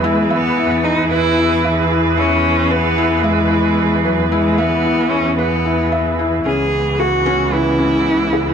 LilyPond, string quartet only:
\new Staff \with { instrumentName = "String quartet" } { \time 4/4 \key e \major \tempo 4 = 112 <e e' gis' b'>1~ | <e e' gis' b'>1~ | <e e' gis' b'>1 | <cis e gis b>1 | }